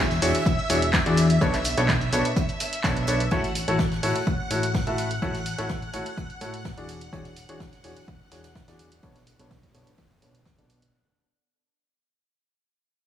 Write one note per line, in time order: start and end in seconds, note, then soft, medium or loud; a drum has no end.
0.00 0.20 E1 medium
0.00 3.33 E5 medium
0.00 3.33 E6 medium
0.11 snare soft
0.11 closed hi-hat soft
0.11 shaker soft
0.22 0.33 E1 medium
0.22 0.35 E3 medium
0.22 0.35 D4 medium
0.22 0.35 F#4 medium
0.22 0.35 G#4 medium
0.22 0.35 C#5 loud
0.22 open hi-hat loud
0.22 open hi-hat medium
0.22 shaker medium
0.35 closed hi-hat medium
0.35 shaker soft
0.46 kick loud
0.46 closed hi-hat medium
0.46 shaker soft
0.59 shaker soft
0.70 1.04 E1 medium
0.70 0.83 E3 medium
0.70 0.83 D4 medium
0.70 0.83 F#4 medium
0.70 0.83 G#4 medium
0.70 0.83 C#5 medium
0.70 closed hi-hat medium
0.70 open hi-hat loud
0.70 shaker medium
0.82 closed hi-hat medium
0.82 shaker soft
0.93 kick loud
0.93 snare loud
0.93 clap loud
0.93 closed hi-hat medium
0.93 shaker soft
1.06 1.39 E2 medium
1.06 1.25 E3 medium
1.06 1.25 D4 medium
1.06 1.25 F#4 medium
1.06 1.25 G#4 medium
1.06 1.25 D5 medium
1.06 closed hi-hat soft
1.17 closed hi-hat medium
1.17 open hi-hat loud
1.17 shaker medium
1.30 closed hi-hat medium
1.30 shaker soft
1.41 1.75 B1 medium
1.41 1.54 B2 loud
1.41 1.54 D4 medium
1.41 1.54 A4 medium
1.41 1.54 B4 medium
1.41 1.54 C#5 loud
1.41 kick loud
1.41 closed hi-hat medium
1.41 shaker soft
1.53 snare soft
1.53 clap soft
1.53 closed hi-hat soft
1.53 shaker soft
1.64 closed hi-hat medium
1.64 open hi-hat loud
1.64 shaker medium
1.77 2.10 B1 medium
1.77 1.89 B2 medium
1.77 1.89 D4 medium
1.77 1.89 A4 medium
1.77 1.89 B4 medium
1.77 1.89 C#5 loud
1.77 snare soft
1.77 closed hi-hat medium
1.77 shaker soft
1.88 kick loud
1.88 snare loud
1.88 clap loud
1.88 closed hi-hat medium
1.88 shaker soft
2.01 closed hi-hat soft
2.01 shaker soft
2.13 2.23 B1 loud
2.13 2.26 B2 medium
2.13 2.26 D4 medium
2.13 2.26 A4 medium
2.13 2.26 B4 medium
2.13 2.26 C#5 loud
2.13 closed hi-hat medium
2.13 open hi-hat loud
2.13 shaker medium
2.25 closed hi-hat medium
2.25 shaker soft
2.36 kick loud
2.36 closed hi-hat medium
2.36 shaker soft
2.49 closed hi-hat soft
2.49 shaker soft
2.60 closed hi-hat medium
2.60 open hi-hat medium
2.60 shaker medium
2.73 closed hi-hat medium
2.73 shaker soft
2.84 3.06 B1 loud
2.84 3.04 B2 medium
2.84 3.04 D4 medium
2.84 3.04 A4 medium
2.84 3.04 B4 medium
2.84 3.04 C#5 medium
2.84 kick loud
2.84 snare loud
2.84 clap loud
2.84 closed hi-hat medium
2.84 shaker soft
2.97 closed hi-hat soft
2.97 shaker soft
3.07 3.29 B1 medium
3.07 3.21 D4 medium
3.07 3.21 A4 medium
3.07 3.21 B4 medium
3.07 3.21 C#5 medium
3.07 closed hi-hat medium
3.07 open hi-hat medium
3.07 shaker medium
3.20 closed hi-hat medium
3.20 shaker soft
3.31 3.45 A3 loud
3.31 3.45 E4 medium
3.31 3.45 F#4 medium
3.31 3.45 A4 medium
3.31 3.45 C#5 loud
3.31 10.95 F#5 medium
3.31 10.95 F#6 medium
3.31 kick loud
3.31 closed hi-hat medium
3.43 snare soft
3.43 closed hi-hat soft
3.55 closed hi-hat medium
3.55 open hi-hat loud
3.68 4.01 A1 medium
3.68 3.80 A3 medium
3.68 3.80 E4 medium
3.68 3.80 F#4 medium
3.68 3.80 A4 medium
3.68 3.80 C#5 loud
3.68 closed hi-hat medium
3.79 kick loud
3.79 snare loud
3.79 closed hi-hat medium
3.92 snare soft
3.92 closed hi-hat soft
4.03 4.14 A1 medium
4.03 4.16 A3 medium
4.03 4.16 E4 medium
4.03 4.16 F#4 medium
4.03 4.16 A4 medium
4.03 4.16 C#5 loud
4.03 open hi-hat medium
4.03 open hi-hat loud
4.16 closed hi-hat medium
4.27 kick loud
4.27 closed hi-hat medium
4.50 4.85 A1 medium
4.50 4.64 A3 medium
4.50 4.64 E4 medium
4.50 4.64 F#4 medium
4.50 4.64 A4 medium
4.50 4.64 C#5 medium
4.50 closed hi-hat medium
4.50 open hi-hat loud
4.63 closed hi-hat medium
4.74 kick loud
4.74 snare loud
4.74 closed hi-hat medium
4.87 5.20 A1 medium
4.87 5.06 A3 medium
4.87 5.06 E4 medium
4.87 5.06 F#4 medium
4.87 5.06 A4 medium
4.87 5.06 E5 medium
4.87 closed hi-hat soft
4.98 closed hi-hat medium
4.98 open hi-hat medium
5.11 closed hi-hat medium
5.22 5.56 A1 medium
5.22 5.35 A3 loud
5.22 5.35 E4 medium
5.22 5.35 F#4 medium
5.22 5.35 A4 medium
5.22 5.35 C#5 loud
5.22 kick loud
5.22 closed hi-hat medium
5.35 snare soft
5.35 closed hi-hat soft
5.46 closed hi-hat medium
5.46 open hi-hat loud
5.58 5.91 A1 medium
5.58 5.70 A3 medium
5.58 5.70 E4 medium
5.58 5.70 F#4 medium
5.58 5.70 A4 medium
5.58 5.70 C#5 loud
5.58 snare soft
5.58 closed hi-hat medium
5.69 kick loud
5.69 snare loud
5.69 closed hi-hat medium
5.82 closed hi-hat soft
5.94 6.04 A1 medium
5.94 6.07 A3 medium
5.94 6.07 E4 medium
5.94 6.07 F#4 medium
5.94 6.07 A4 medium
5.94 6.07 C#5 loud
5.94 closed hi-hat medium
5.94 open hi-hat medium
6.06 closed hi-hat medium
6.17 kick loud
6.17 closed hi-hat medium
6.30 closed hi-hat soft
6.41 6.75 A2 medium
6.41 6.54 A3 medium
6.41 6.54 E4 medium
6.41 6.54 F#4 medium
6.41 6.54 A4 medium
6.41 6.54 C#5 medium
6.41 closed hi-hat medium
6.41 open hi-hat medium
6.54 closed hi-hat medium
6.65 kick loud
6.65 snare loud
6.65 closed hi-hat medium
6.78 7.10 E1 medium
6.78 6.97 E3 medium
6.78 6.97 D4 medium
6.78 6.97 F#4 medium
6.78 6.97 G#4 medium
6.78 6.97 D5 medium
6.78 closed hi-hat soft
6.88 closed hi-hat medium
6.88 open hi-hat medium
7.01 closed hi-hat medium
7.13 7.46 E1 medium
7.13 7.26 E3 loud
7.13 7.26 D4 medium
7.13 7.26 F#4 medium
7.13 7.26 G#4 medium
7.13 7.26 C#5 loud
7.13 kick loud
7.13 closed hi-hat medium
7.24 snare soft
7.24 closed hi-hat soft
7.36 closed hi-hat medium
7.36 open hi-hat medium
7.49 7.82 E1 medium
7.49 7.61 E3 medium
7.49 7.61 D4 medium
7.49 7.61 F#4 medium
7.49 7.61 G#4 medium
7.49 7.61 C#5 medium
7.49 closed hi-hat medium
7.60 kick loud
7.60 snare loud
7.60 closed hi-hat medium
7.73 snare soft
7.73 closed hi-hat soft
7.83 7.95 E1 loud
7.83 7.97 E3 medium
7.83 7.97 D4 medium
7.83 7.97 F#4 medium
7.83 7.97 G#4 medium
7.83 7.97 C#5 medium
7.83 open hi-hat medium
7.97 closed hi-hat medium
8.08 kick loud
8.08 closed hi-hat medium
8.32 8.66 E1 medium
8.32 8.45 E3 medium
8.32 8.45 D4 medium
8.32 8.45 F#4 medium
8.32 8.45 G#4 medium
8.32 8.45 C#5 medium
8.32 snare loud
8.32 closed hi-hat medium
8.32 open hi-hat medium
8.44 snare medium
8.44 closed hi-hat medium
8.55 kick loud
8.55 snare loud
8.55 closed hi-hat medium
8.68 9.01 E2 medium
8.68 8.87 E3 medium
8.68 8.87 D4 medium
8.68 8.87 F#4 medium
8.68 8.87 G#4 medium
8.68 8.87 D5 medium
8.68 snare medium
8.68 closed hi-hat soft
8.68 closed hi-hat medium
8.79 closed hi-hat medium
8.79 open hi-hat medium
8.92 closed hi-hat medium
9.03 9.37 B1 medium
9.03 9.16 B2 loud
9.03 9.16 D4 medium
9.03 9.16 A4 medium
9.03 9.16 B4 medium
9.03 9.16 C#5 loud
9.03 kick loud
9.03 closed hi-hat medium
9.16 snare soft
9.16 closed hi-hat medium
9.27 closed hi-hat medium
9.27 open hi-hat loud
9.39 9.72 B1 medium
9.39 9.51 B2 medium
9.39 9.51 D4 medium
9.39 9.51 A4 medium
9.39 9.51 B4 medium
9.39 9.51 C#5 medium
9.39 snare soft
9.39 closed hi-hat medium
9.51 kick loud
9.51 snare loud
9.51 closed hi-hat medium
9.63 kick medium
9.63 closed hi-hat soft
9.75 9.85 B1 loud
9.75 9.88 B2 medium
9.75 9.88 D4 medium
9.75 9.88 A4 medium
9.75 9.88 B4 medium
9.75 9.88 C#5 medium
9.75 closed hi-hat medium
9.75 open hi-hat medium
9.87 closed hi-hat medium
9.98 kick loud
9.98 closed hi-hat medium
10.11 closed hi-hat soft
10.22 10.56 B1 medium
10.22 10.35 B2 medium
10.22 10.35 D4 medium
10.22 10.35 A4 medium
10.22 10.35 B4 medium
10.22 10.35 C#5 medium
10.22 closed hi-hat medium
10.22 open hi-hat medium
10.35 closed hi-hat medium
10.46 kick loud
10.46 snare loud
10.46 closed hi-hat medium
10.59 10.91 B1 medium
10.59 10.78 B2 medium
10.59 10.78 D4 medium
10.59 10.78 A4 medium
10.59 10.78 B4 medium
10.59 10.78 D5 medium
10.59 closed hi-hat soft
10.70 closed hi-hat medium
10.70 open hi-hat medium
10.82 closed hi-hat medium